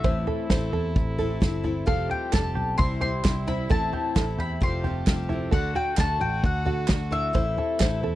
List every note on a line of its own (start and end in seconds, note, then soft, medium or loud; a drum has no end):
0.00 0.50 A2 medium
0.00 2.75 A3 medium
0.00 0.69 E5 loud
0.04 0.25 A1 loud
0.04 1.85 C3 medium
0.04 0.50 E3 medium
0.04 0.49 A3 medium
0.04 0.50 C4 medium
0.04 1.85 E4 medium
0.04 0.50 E4 medium
0.04 0.50 A4 medium
0.04 0.27 C5 loud
0.04 kick loud
0.04 floor tom loud
0.27 0.49 A4 medium
0.27 floor tom medium
0.50 0.71 A1 loud
0.50 1.18 A3 medium
0.50 1.20 C4 medium
0.50 1.19 E4 medium
0.50 1.17 A4 medium
0.50 0.72 C5 medium
0.50 kick loud
0.50 snare loud
0.50 floor tom medium
0.73 0.94 E2 medium
0.73 1.17 A4 medium
0.73 floor tom medium
0.96 1.38 A1 loud
0.96 kick loud
0.96 floor tom medium
1.18 1.39 A3 medium
1.18 1.40 C4 medium
1.18 1.41 E4 medium
1.18 1.41 A4 medium
1.18 1.63 A4 medium
1.18 floor tom medium
1.40 1.84 G1 medium
1.40 1.64 A3 medium
1.40 1.64 C4 medium
1.40 1.64 E4 medium
1.40 1.62 A4 medium
1.40 kick loud
1.40 snare loud
1.40 floor tom medium
1.64 1.86 A3 soft
1.64 1.85 C4 medium
1.64 1.86 E4 medium
1.64 1.87 E4 medium
1.64 1.87 A4 medium
1.64 floor tom medium
1.86 2.08 F1 medium
1.86 2.32 F3 medium
1.86 2.77 F3 medium
1.86 2.31 G3 medium
1.86 2.33 C4 medium
1.86 2.77 G4 medium
1.86 2.32 G4 medium
1.86 2.09 A4 medium
1.86 2.33 A4 medium
1.86 2.10 F5 medium
1.86 kick loud
1.86 floor tom loud
2.10 2.32 F4 medium
2.10 2.34 G5 medium
2.10 floor tom medium
2.32 2.54 F1 loud
2.32 2.77 G3 medium
2.32 2.79 C4 medium
2.32 2.79 G4 medium
2.32 2.55 A4 medium
2.32 2.79 A4 medium
2.32 2.77 A5 loud
2.32 kick loud
2.32 snare loud
2.32 clap medium
2.32 floor tom medium
2.55 2.76 B1 medium
2.55 3.00 G4 medium
2.55 floor tom medium
2.78 3.21 C2 loud
2.78 3.01 C3 medium
2.78 4.59 C3 medium
2.78 3.01 E3 medium
2.78 3.01 G3 medium
2.78 3.69 G3 medium
2.78 3.02 C4 medium
2.78 4.59 E4 medium
2.78 3.01 E4 medium
2.78 3.00 C5 medium
2.78 2.99 C6 loud
2.78 kick loud
2.78 floor tom medium
3.01 3.22 G3 medium
3.01 3.23 C4 medium
3.01 3.24 E4 medium
3.01 3.46 G4 medium
3.01 3.24 C5 medium
3.01 3.47 C6 loud
3.01 floor tom medium
3.24 3.66 C2 medium
3.24 3.47 G3 medium
3.24 3.47 C4 medium
3.24 3.47 E4 medium
3.24 3.46 C5 medium
3.24 kick loud
3.24 snare loud
3.24 clap loud
3.24 floor tom loud
3.47 3.70 G3 soft
3.47 3.69 C4 soft
3.47 3.69 E4 medium
3.47 3.70 E4 medium
3.47 3.70 C5 medium
3.47 3.71 B5 loud
3.47 floor tom loud
3.69 3.91 A1 loud
3.69 4.15 A2 medium
3.69 4.15 E3 medium
3.69 5.50 A3 medium
3.69 4.14 A3 medium
3.69 4.15 C4 medium
3.69 4.16 E4 medium
3.69 3.92 A4 loud
3.69 4.17 A4 medium
3.69 4.39 A5 loud
3.69 kick loud
3.69 floor tom loud
3.93 4.15 G4 medium
3.93 floor tom medium
4.15 4.37 A1 loud
4.15 4.61 A3 medium
4.15 4.61 C4 medium
4.15 4.62 E4 medium
4.15 4.38 A4 medium
4.15 4.62 A4 medium
4.15 kick loud
4.15 snare loud
4.15 clap loud
4.15 floor tom medium
4.38 4.59 E2 medium
4.38 4.83 G4 medium
4.38 4.62 B5 loud
4.38 floor tom medium
4.61 5.03 F1 loud
4.61 4.84 F3 medium
4.61 5.52 F3 medium
4.61 4.84 G3 medium
4.61 4.84 C4 medium
4.61 4.85 F4 medium
4.61 5.52 G4 medium
4.61 4.83 A4 medium
4.61 5.26 C6 loud
4.61 kick loud
4.61 floor tom medium
4.84 5.07 C4 medium
4.84 5.08 F4 medium
4.84 5.29 G4 medium
4.84 5.07 A4 medium
4.84 floor tom medium
5.07 5.49 F1 loud
5.07 5.30 G3 medium
5.07 5.30 C4 medium
5.07 5.30 F4 medium
5.07 5.29 A4 medium
5.07 kick loud
5.07 snare loud
5.07 clap medium
5.07 floor tom medium
5.29 5.53 C4 medium
5.29 5.52 E4 medium
5.29 5.53 F4 medium
5.29 5.52 A4 medium
5.29 floor tom medium
5.51 5.73 D2 loud
5.51 7.32 D3 medium
5.51 5.98 D3 medium
5.51 8.15 A3 medium
5.51 5.96 A3 medium
5.51 5.97 D4 medium
5.51 7.32 F#4 medium
5.51 5.97 F#4 medium
5.51 5.74 A4 loud
5.51 5.99 A4 medium
5.51 5.76 F#5 medium
5.51 kick loud
5.51 floor tom loud
5.75 5.97 F#4 medium
5.75 5.97 G5 loud
5.75 floor tom medium
5.96 6.19 D2 loud
5.96 6.87 A3 medium
5.96 6.66 D4 medium
5.96 6.66 F#4 medium
5.96 6.20 A4 medium
5.96 6.65 A4 medium
5.96 6.21 A5 loud
5.96 kick loud
5.96 snare loud
5.96 clap loud
5.96 floor tom medium
6.20 6.41 A1 medium
6.20 6.65 F#4 medium
6.20 6.44 G5 loud
6.20 floor tom medium
6.43 6.85 D2 loud
6.43 6.87 F#5 medium
6.43 kick loud
6.43 floor tom medium
6.65 6.88 D4 soft
6.65 7.11 F#4 medium
6.65 6.89 F#4 medium
6.65 6.89 A4 medium
6.65 floor tom loud
6.88 7.31 D2 medium
6.88 7.11 A3 medium
6.88 7.12 D4 medium
6.88 7.11 F#4 medium
6.88 7.09 A4 medium
6.88 kick loud
6.88 snare loud
6.88 clap loud
6.88 floor tom medium
7.11 7.34 D4 soft
7.11 7.34 E4 medium
7.11 7.34 F#4 soft
7.11 7.34 A4 medium
7.11 7.99 E5 loud
7.11 floor tom medium
7.33 7.56 A1 loud
7.33 7.80 A2 medium
7.33 8.15 C3 medium
7.33 7.80 E3 medium
7.33 7.77 A3 medium
7.33 7.79 C4 medium
7.33 7.80 E4 medium
7.33 8.15 E4 medium
7.33 7.81 A4 medium
7.33 7.57 C5 loud
7.33 kick loud
7.33 floor tom loud
7.58 7.80 A4 medium
7.58 floor tom medium
7.79 8.01 A1 loud
7.79 8.15 A3 medium
7.79 8.15 C4 medium
7.79 8.15 E4 medium
7.79 8.15 A4 medium
7.79 8.03 C5 medium
7.79 kick loud
7.79 snare loud
7.79 clap loud
7.79 floor tom medium
8.03 8.15 E2 medium
8.03 8.15 A4 medium
8.03 floor tom medium